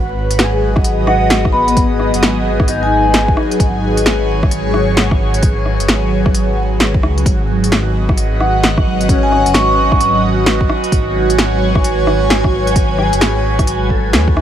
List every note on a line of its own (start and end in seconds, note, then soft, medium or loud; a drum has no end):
0.00 2.12 G#1 loud
0.00 14.41 F#3 medium
0.00 1.57 F#4 medium
0.00 7.26 B4 medium
0.00 7.25 F#5 medium
0.09 8.86 G#4 medium
0.31 closed hi-hat medium
0.38 2.09 G#4 medium
0.38 snare loud
0.38 closed hi-hat medium
0.44 4.02 D#5 medium
0.76 kick loud
0.76 cross-stick medium
0.84 closed hi-hat medium
1.07 2.78 F#4 medium
1.07 1.32 F#5 medium
1.07 cross-stick medium
1.30 snare loud
1.30 closed hi-hat medium
1.45 kick loud
1.45 cross-stick medium
1.53 3.24 B3 medium
1.53 1.77 B5 medium
1.68 closed hi-hat soft
1.77 kick loud
1.77 closed hi-hat medium
2.00 cross-stick soft
2.14 2.22 F#1 loud
2.14 closed hi-hat medium
2.22 3.36 G#1 medium
2.22 snare loud
2.22 closed hi-hat medium
2.60 kick loud
2.60 cross-stick medium
2.68 4.39 D#4 medium
2.68 closed hi-hat medium
2.83 3.28 G#5 medium
3.14 snare loud
3.14 closed hi-hat medium
3.28 kick loud
3.37 cross-stick medium
3.52 closed hi-hat soft
3.60 5.78 G#1 loud
3.60 kick loud
3.60 closed hi-hat medium
3.90 7.27 C#5 medium
3.97 closed hi-hat medium
4.06 snare loud
4.06 closed hi-hat medium
4.43 kick loud
4.43 cross-stick medium
4.51 closed hi-hat medium
4.74 cross-stick medium
4.97 snare loud
4.97 closed hi-hat medium
5.11 kick loud
5.11 cross-stick medium
5.34 closed hi-hat soft
5.43 kick loud
5.43 closed hi-hat medium
5.66 cross-stick soft
5.80 5.88 F#1 medium
5.80 closed hi-hat medium
5.88 7.02 G#1 medium
5.88 snare loud
5.88 closed hi-hat medium
6.26 kick loud
6.26 cross-stick medium
6.35 closed hi-hat medium
6.80 snare loud
6.80 closed hi-hat medium
6.94 kick loud
7.03 7.25 C#2 medium
7.03 cross-stick medium
7.18 closed hi-hat soft
7.26 9.45 G#1 loud
7.26 14.41 F#4 medium
7.26 kick loud
7.26 closed hi-hat medium
7.42 14.41 F#4 medium
7.64 14.41 B4 medium
7.64 closed hi-hat medium
7.70 10.94 D#5 medium
7.70 snare loud
7.70 closed hi-hat medium
8.03 11.08 F#5 loud
8.09 kick loud
8.09 cross-stick medium
8.18 closed hi-hat medium
8.40 8.65 F#5 medium
8.40 cross-stick medium
8.64 snare loud
8.64 closed hi-hat medium
8.78 kick loud
8.78 cross-stick medium
9.01 closed hi-hat soft
9.09 10.80 C#4 medium
9.09 kick loud
9.09 closed hi-hat medium
9.23 9.47 G#5 medium
9.32 cross-stick soft
9.46 9.54 F#1 loud
9.46 closed hi-hat medium
9.54 10.68 G#1 medium
9.54 10.20 C#6 loud
9.54 snare loud
9.54 closed hi-hat medium
9.92 kick loud
9.92 cross-stick medium
10.01 closed hi-hat medium
10.46 snare loud
10.46 closed hi-hat medium
10.61 kick loud
10.70 cross-stick medium
10.83 14.41 C#5 medium
10.83 closed hi-hat soft
10.92 13.11 G#1 loud
10.92 14.41 G#5 medium
10.92 kick loud
10.92 closed hi-hat medium
11.30 closed hi-hat medium
11.38 snare loud
11.38 closed hi-hat medium
11.75 kick loud
11.75 cross-stick medium
11.84 closed hi-hat medium
12.07 cross-stick medium
12.30 snare loud
12.30 closed hi-hat medium
12.44 kick loud
12.44 cross-stick medium
12.67 closed hi-hat soft
12.76 kick loud
12.76 closed hi-hat medium
12.98 14.41 G#4 medium
12.98 cross-stick soft
13.13 13.21 F#1 loud
13.13 closed hi-hat medium
13.21 14.15 G#1 medium
13.21 snare loud
13.21 closed hi-hat medium
13.59 kick loud
13.59 cross-stick medium
13.59 closed hi-hat soft
13.67 closed hi-hat medium
13.90 14.41 A4 soft
13.90 kick medium
14.13 14.41 D#2 medium
14.13 snare loud
14.13 closed hi-hat medium
14.28 kick loud
14.37 cross-stick medium